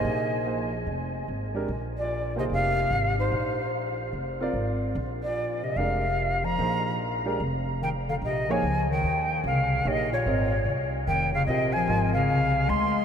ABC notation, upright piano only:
X:1
M:4/4
L:1/8
Q:"Swing" 1/4=147
K:Bbmix
V:1 name="Upright piano"
[B,EAc]2 [B,EAc] z4 [A,DGB] | z3 [B,EAc]3 z2 | z4 z [CFBd]3 | z4 [A,DGB] z3 |
[B,EAc]3 [A,DGB] z4 | [K:Ebmix] z [B,EAd] z6 | [B,EAd] z [CFBe] z4 z | [CFBe]2 [CFBe]3 z3 |]